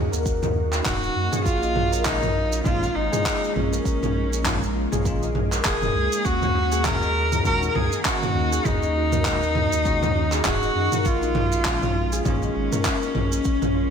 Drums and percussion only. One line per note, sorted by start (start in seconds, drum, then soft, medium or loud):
0.13 shaker medium
0.26 kick loud
0.26 shaker medium
0.43 mid tom medium
0.43 shaker soft
0.73 clap soft
0.73 shaker medium
0.86 kick loud
0.86 clap loud
0.86 mid tom medium
0.86 shaker medium
1.03 shaker soft
1.33 mid tom medium
1.33 shaker medium
1.46 kick loud
1.46 shaker medium
1.63 shaker soft
1.76 mid tom medium
1.93 shaker medium
2.05 kick loud
2.05 clap loud
2.05 shaker medium
2.23 mid tom medium
2.23 shaker soft
2.52 shaker medium
2.65 kick loud
2.65 mid tom medium
2.65 shaker medium
2.83 shaker soft
3.13 mid tom medium
3.13 shaker medium
3.25 kick loud
3.25 clap loud
3.25 shaker medium
3.44 shaker soft
3.56 mid tom medium
3.73 shaker medium
3.85 kick loud
3.85 shaker medium
4.03 mid tom medium
4.03 shaker soft
4.33 shaker medium
4.45 kick loud
4.45 clap medium
4.45 mid tom medium
4.45 shaker medium
4.63 shaker soft
4.92 mid tom medium
4.92 shaker medium
5.05 kick loud
5.05 shaker medium
5.23 shaker soft
5.35 mid tom medium
5.52 clap soft
5.52 shaker medium
5.65 kick loud
5.65 clap loud
5.65 shaker medium
5.82 mid tom medium
5.82 shaker soft
6.12 shaker medium
6.25 kick loud
6.25 shaker medium
6.42 mid tom medium
6.42 shaker soft
6.72 shaker medium
6.85 kick loud
6.85 clap medium
6.85 mid tom medium
6.85 shaker medium
7.02 shaker soft
7.32 mid tom medium
7.32 shaker medium
7.45 kick loud
7.45 shaker medium
7.62 shaker soft
7.75 mid tom medium
7.92 shaker medium
8.05 kick loud
8.05 clap medium
8.05 shaker medium
8.23 mid tom medium
8.23 shaker soft
8.53 shaker medium
8.65 kick loud
8.65 mid tom medium
8.65 shaker medium
8.83 shaker soft
9.12 mid tom medium
9.12 shaker medium
9.25 kick loud
9.25 clap medium
9.25 shaker medium
9.43 shaker soft
9.55 mid tom medium
9.73 shaker medium
9.85 kick loud
9.85 shaker medium
10.03 mid tom medium
10.03 shaker soft
10.32 clap soft
10.32 shaker medium
10.45 kick loud
10.45 clap medium
10.45 mid tom medium
10.45 shaker medium
10.62 shaker soft
10.92 mid tom medium
10.92 shaker medium
11.05 kick loud
11.05 shaker medium
11.23 shaker soft
11.35 mid tom medium
11.52 shaker medium
11.65 kick medium
11.65 clap medium
11.65 shaker medium
11.83 mid tom medium
11.83 shaker soft
12.13 shaker medium
12.25 kick loud
12.25 mid tom medium
12.25 shaker medium
12.42 shaker soft
12.72 mid tom medium
12.72 shaker medium
12.85 kick loud
12.85 clap loud
12.85 shaker medium
13.03 shaker soft
13.15 mid tom medium
13.32 shaker medium
13.45 kick loud
13.45 shaker medium
13.62 mid tom medium
13.62 shaker soft